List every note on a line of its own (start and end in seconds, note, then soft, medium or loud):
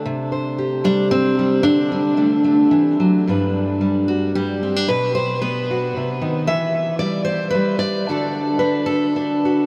0.06 1.61 C3 medium
0.32 1.61 C5 soft
0.58 1.61 G4 soft
0.84 1.38 G3 medium
0.84 1.11 D4 loud
1.11 1.63 C4 loud
1.39 1.91 G3 soft
1.63 2.16 D3 medium
1.63 3.26 D4 loud
1.92 2.17 G3 soft
2.17 2.71 D3 medium
2.17 2.43 A3 soft
2.44 3.23 A3 soft
2.71 2.99 E3 medium
3.00 3.27 F#3 medium
3.27 4.89 G2 medium
3.27 3.80 G3 soft
3.27 4.62 D4 soft
3.27 4.88 B4 soft
3.81 4.34 G3 medium
4.08 4.35 F#4 medium
4.35 4.89 G3 medium
4.35 4.89 G4 medium
4.63 4.76 C4 soft
4.76 4.89 D4 soft
4.88 5.95 B2 medium
4.88 5.14 B4 loud
5.15 5.41 C5 medium
5.42 6.45 B3 medium
5.42 6.47 B4 medium
5.71 6.46 F#4 soft
5.97 6.22 C3 medium
6.22 6.48 D#3 medium
6.47 8.04 E3 medium
6.47 7.54 E5 loud
6.99 7.54 G3 medium
6.99 7.24 D5 medium
7.25 7.50 C5 medium
7.50 7.78 B4 medium
7.55 8.07 G3 medium
7.79 8.59 D5 loud
8.09 9.66 D3 medium
8.09 8.60 D4 soft
8.09 9.44 F#4 soft
8.09 8.86 A4 soft
8.59 9.15 D4 medium
8.59 9.42 B4 medium
8.86 9.66 A4 medium
9.16 9.66 D4 medium
9.45 9.66 F#4 soft